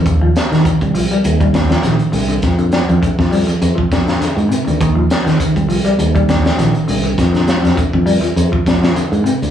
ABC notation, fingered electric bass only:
X:1
M:4/4
L:1/16
Q:"Swing 16ths" 1/4=101
K:Eb
V:1 name="Fingered electric bass" clef=bass
E,,2 z E, z C,,2 z E,,4 B,,, z C,,2 | F,,3 F,, z F,,2 z F,, z F,,2 z A,, z D,, | E,,2 z E, z C,,2 z E,,4 B,,, z C,,2 | F,,3 F,, z F,,2 z F,, z F,,2 z A,, z D,, |]